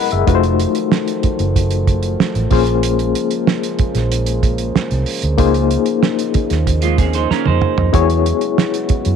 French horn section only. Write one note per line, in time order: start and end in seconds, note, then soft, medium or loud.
0.00 0.24 C#3 medium
0.00 2.47 F#3 medium
0.00 0.24 G#3 medium
0.00 0.24 B3 medium
0.00 0.24 E4 medium
0.28 2.49 D#3 medium
0.28 5.35 F3 medium
0.28 2.49 A3 medium
0.28 7.90 C5 medium
2.50 9.16 C#3 medium
2.50 5.35 G#3 medium
2.50 7.89 A#3 medium
5.39 7.91 F3 medium
5.39 7.92 D#4 medium
7.93 9.16 F#3 medium
7.93 9.16 G#3 medium
7.93 9.16 B3 medium
7.93 9.16 E4 medium